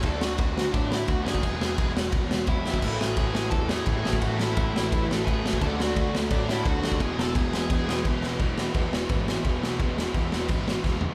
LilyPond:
<<
  \new Staff \with { instrumentName = "Lead electric guitar" } { \time 4/4 \key e \mixolydian \tempo 4 = 172 <a' a''>8 <fis' fis''>4. <d' d''>8 <e' e''>8 <fis' fis''>8 <gis' gis''>8~ | <gis' gis''>4. r4. <e' e''>4 | <e' e''>8 <gis' gis''>4. <a' a''>8 <gis' gis''>4. | <fis' fis''>8 <e' e''>2 r8 <gis' gis''>4 |
<a' a''>8 <fis' fis''>4 r8 <d' d''>8 <e' e''>8 <fis' fis''>4 | <gis' gis''>8 <a' a''>8 <gis' gis''>2 r4 | r1 | r1 | }
  \new Staff \with { instrumentName = "Distorted electric guitar" } { \clef bass \time 4/4 \key e \mixolydian <d a d'>2.~ <d a d'>8 <d a d'>8 | <e, b, e>2.~ <e, b, e>8 <e, b, e>8 | <a, e a>2.~ <a, e a>8 <a, e a>8 | <a, e a>2.~ <a, e a>8 <a, e a>8 |
<d a d'>2.~ <d a d'>8 <d a d'>8 | <e, b, e>2.~ <e, b, e>8 <e, b, e>8 | <e, b, e>1 | <e, b, e>1 | }
  \new Staff \with { instrumentName = "Overdriven electric guitar" } { \clef bass \time 4/4 \key e \mixolydian <d a d'>2.~ <d a d'>8 <d a d'>8 | <e, b, e>2.~ <e, b, e>8 <e, b, e>8 | <a, e a>2.~ <a, e a>8 <a, e a>8 | <a, e a>2.~ <a, e a>8 <a, e a>8 |
<d a d'>2.~ <d a d'>8 <d a d'>8 | <e, b, e>2.~ <e, b, e>8 <e, b, e>8 | <e, b, e>8 <e, b, e>8 <e, b, e>8 <e, b, e>8 <e, b, e>8 <e, b, e>8 <e, b, e>8 <e, b, e>8 | <e, b, e>8 <e, b, e>8 <e, b, e>8 <e, b, e>8 <e, b, e>8 <e, b, e>8 <e, b, e>8 <e, b, e>8 | }
  \new Staff \with { instrumentName = "Overdriven electric guitar" } { \clef bass \time 4/4 \key e \mixolydian r1 | r1 | <a, e a>2~ <a, e a>8 <a, e a>8 <a, e a>4 | <a, e a>2~ <a, e a>8 <a, e a>8 <a, e a>4 |
<d a d'>2~ <d a d'>8 <d a d'>8 <d a d'>4 | <e, b, e>2~ <e, b, e>8 <e, b, e>8 <e, b, e>4 | <e, b, e>8 <e, b, e>8 <e, b, e>8 <e, b, e>8 <e, b, e>8 <e, b, e>8 <e, b, e>8 <e, b, e>8 | <e, b, e>8 <e, b, e>8 <e, b, e>8 <e, b, e>8 <e, b, e>8 <e, b, e>8 <e, b, e>8 <e, b, e>8 | }
  \new Staff \with { instrumentName = "Picked electric bass" } { \clef bass \time 4/4 \key e \mixolydian d,8 d,8 d,8 d,8 a,4 d,8 fis,8 | e,,8 e,,8 e,,8 e,,8 e,,8 e,,8 e,,4 | a,,8 a,,8 a,,8 a,,8 e,4 a,,8 a,,8 | a,,8 a,,8 a,,8 a,,8 a,,8 a,,8 a,,4 |
d,8 d,8 d,8 d,8 a,4 d,8 dis,8 | e,,8 e,,8 e,,8 e,,8 e,,8 e,,8 e,,4 | e,,4 e,8 e,,8 gis,,4 e,,8 b,,8 | e,,4 e,8 e,,8 gis,,4 e,,8 b,,8 | }
  \new DrumStaff \with { instrumentName = "Drums" } \drummode { \time 4/4 <bd cymr>8 sn8 <bd cymr>8 sn8 <bd cymr>8 sn8 <bd cymr>8 sn16 bd16 | <bd cymr>8 sn8 <bd cymr>8 sn8 <bd cymr>8 sn8 <bd cymr>8 sn16 bd16 | <cymc bd>8 sn8 <bd cymr>8 sn8 <bd cymr>8 sn8 <bd cymr>8 sn16 bd16 | <bd cymr>8 sn8 <bd cymr>8 sn8 <bd cymr>8 sn8 <bd cymr>8 sn16 bd16 |
<bd cymr>8 sn8 <bd cymr>8 sn8 <bd cymr>8 sn8 <bd cymr>8 sn16 bd16 | <bd cymr>8 sn8 <bd cymr>8 sn8 <bd cymr>8 sn8 <bd cymr>8 sn8 | <cymc bd>8 sn8 <cymc bd>8 sn8 <cymc bd>8 sn8 <cymc bd>8 sn8 | <cymc bd>8 sn8 <cymc bd>8 sn8 <cymc bd>8 sn8 <bd sn>8 tomfh8 | }
>>